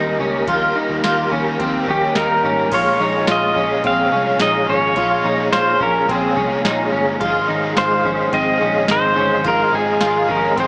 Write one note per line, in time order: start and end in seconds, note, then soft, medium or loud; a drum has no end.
0.00 0.17 D#2 loud
0.00 0.46 G3 medium
0.00 0.47 A#3 medium
0.00 0.20 D#4 medium
0.00 0.47 D#4 medium
0.00 0.48 G4 medium
0.00 2.69 G4 medium
0.00 2.69 A#4 medium
0.00 0.46 D#5 medium
0.00 2.69 A#5 medium
0.19 0.44 C#2 medium
0.19 0.48 C#4 medium
0.46 0.72 D#2 medium
0.46 1.03 D#3 medium
0.46 1.01 G3 medium
0.46 1.04 A#3 medium
0.46 1.04 D#4 medium
0.46 0.76 F4 loud
0.46 1.05 G4 medium
0.46 2.69 F5 medium
0.46 kick loud
0.46 closed hi-hat medium
0.76 1.04 D#4 medium
0.90 1.02 D#2 loud
1.02 1.29 D#2 medium
1.02 1.55 G3 medium
1.02 1.60 A#3 medium
1.02 1.61 D#4 medium
1.02 1.32 F4 medium
1.02 snare loud
1.02 closed hi-hat medium
1.02 tambourine medium
1.07 1.61 G4 medium
1.31 1.56 D#2 loud
1.31 1.59 C#4 medium
1.31 kick medium
1.57 1.85 D#2 medium
1.57 2.70 G3 medium
1.57 1.88 C4 medium
1.57 kick medium
1.57 closed hi-hat medium
1.61 2.72 A#3 medium
1.61 2.72 D#4 medium
1.67 2.73 G4 medium
1.88 2.12 D#2 medium
1.88 2.16 C#4 medium
1.88 2.18 G4 medium
1.88 kick medium
2.15 2.41 D#2 loud
2.15 2.44 D#4 medium
2.15 2.75 A#4 medium
2.15 snare loud
2.15 closed hi-hat medium
2.15 tambourine medium
2.44 2.69 G#1 medium
2.44 2.72 C#4 medium
2.70 2.97 A#1 loud
2.70 3.55 A#2 medium
2.70 3.84 F3 medium
2.70 3.59 G#3 medium
2.70 3.56 C#4 medium
2.70 3.00 F4 medium
2.70 7.17 G#4 medium
2.70 3.54 G#4 medium
2.70 7.17 C#5 medium
2.70 3.31 C#5 medium
2.70 7.17 F5 medium
2.70 7.17 A#5 medium
2.70 kick loud
2.70 closed hi-hat medium
2.70 crash loud
2.99 3.24 A#1 medium
2.99 3.28 D#4 medium
3.27 3.53 A#1 loud
3.27 3.56 F4 medium
3.27 snare loud
3.27 closed hi-hat medium
3.27 tambourine medium
3.31 3.82 D#5 loud
3.55 3.81 A#1 medium
3.55 3.84 C#4 medium
3.55 3.85 C#4 soft
3.55 3.84 G#4 soft
3.55 kick medium
3.59 3.85 G#3 soft
3.82 4.09 A#1 loud
3.82 4.93 A#2 medium
3.82 4.96 F3 medium
3.82 4.98 G#3 medium
3.82 4.12 C4 medium
3.82 kick medium
3.82 closed hi-hat medium
3.87 4.98 C#4 medium
3.87 5.01 G#4 loud
3.87 4.42 F5 loud
4.12 4.37 C2 medium
4.12 4.40 C#4 medium
4.39 4.65 A#1 loud
4.39 4.69 D#4 medium
4.39 4.70 D#5 medium
4.39 snare loud
4.39 closed hi-hat medium
4.39 tambourine medium
4.68 4.93 G#1 medium
4.68 4.97 C#4 medium
4.68 5.52 C#5 medium
4.95 5.21 A#1 loud
4.95 6.05 A#2 medium
4.95 6.09 F3 medium
4.95 6.10 G#3 medium
4.95 5.25 F4 loud
4.95 kick loud
4.95 closed hi-hat medium
5.00 6.10 C#4 medium
5.00 6.14 G#4 medium
5.24 5.49 A#1 medium
5.24 5.52 D#4 medium
5.52 5.77 A#1 loud
5.52 5.81 F4 medium
5.52 5.81 C5 medium
5.52 snare loud
5.52 closed hi-hat medium
5.52 tambourine medium
5.80 6.05 A#1 loud
5.80 6.08 C#4 medium
5.80 6.10 A#4 medium
5.80 kick medium
6.07 6.33 A#1 loud
6.07 7.20 A#2 medium
6.07 7.21 F3 medium
6.07 6.36 C4 medium
6.07 kick medium
6.07 closed hi-hat medium
6.11 7.23 G#3 medium
6.11 7.23 C#4 medium
6.11 6.90 G#4 medium
6.11 7.25 G#4 medium
6.36 6.61 C2 medium
6.36 6.64 C#4 medium
6.36 kick loud
6.65 6.89 A#1 loud
6.65 6.92 D#4 medium
6.65 snare loud
6.65 closed hi-hat medium
6.65 tambourine medium
6.92 7.17 G1 loud
6.92 7.20 C#4 medium
7.18 7.45 G#1 loud
7.18 8.29 G#2 medium
7.18 8.30 D#3 loud
7.18 8.33 F3 medium
7.18 7.49 F4 loud
7.18 10.67 G#4 medium
7.18 10.67 D#5 medium
7.18 10.67 F5 medium
7.18 10.67 C6 medium
7.18 kick loud
7.18 closed hi-hat medium
7.23 8.34 G#3 medium
7.23 8.35 C4 loud
7.23 8.37 G#4 loud
7.48 7.73 G#1 loud
7.48 7.76 D#4 medium
7.76 8.01 G#1 loud
7.76 8.05 F4 medium
7.76 8.35 C5 loud
7.76 snare loud
7.76 closed hi-hat medium
7.76 tambourine medium
8.04 8.29 G#1 loud
8.04 8.32 C#4 medium
8.04 kick medium
8.30 8.58 G#1 medium
8.30 9.42 G#2 medium
8.30 9.43 D#3 medium
8.30 9.45 F3 medium
8.30 8.60 C4 medium
8.30 kick medium
8.30 closed hi-hat medium
8.34 9.45 G#3 medium
8.34 9.45 C4 medium
8.34 9.46 G#4 medium
8.34 8.91 D#5 loud
8.61 8.86 A#1 medium
8.61 8.88 C#4 medium
8.88 9.14 G#1 medium
8.88 9.16 D#4 medium
8.88 9.48 C5 loud
8.88 snare loud
8.88 closed hi-hat medium
8.88 tambourine medium
9.16 9.42 G1 loud
9.16 9.45 C#4 medium
9.44 9.70 G#1 loud
9.44 10.00 G#2 medium
9.44 10.01 D#3 medium
9.44 9.99 F3 medium
9.44 10.01 G#3 medium
9.44 10.01 C4 medium
9.44 9.73 F4 medium
9.44 10.04 G#4 loud
9.44 kick loud
9.44 closed hi-hat medium
9.48 9.75 A#4 loud
9.73 9.98 G#1 loud
9.73 10.01 D#4 medium
9.73 10.32 G#4 medium
9.99 10.26 G#1 loud
9.99 10.28 F3 medium
9.99 10.29 G#3 soft
9.99 10.28 C4 medium
9.99 10.29 F4 medium
9.99 snare loud
9.99 closed hi-hat medium
9.99 tambourine medium
10.04 10.26 G#4 medium
10.28 10.54 G#1 loud
10.28 10.58 G#3 soft
10.28 10.57 C4 soft
10.28 10.56 C#4 medium
10.28 10.56 G#4 medium
10.28 10.59 A#4 medium
10.28 kick medium
10.32 10.57 F3 soft
10.55 10.67 G#1 loud
10.55 10.67 G#2 medium
10.55 10.67 D#3 medium
10.55 10.67 F3 medium
10.55 10.67 C4 medium
10.55 kick medium
10.55 closed hi-hat medium
10.60 10.67 G#3 medium
10.60 10.67 C4 loud
10.60 10.67 G#4 loud
10.60 10.67 C5 medium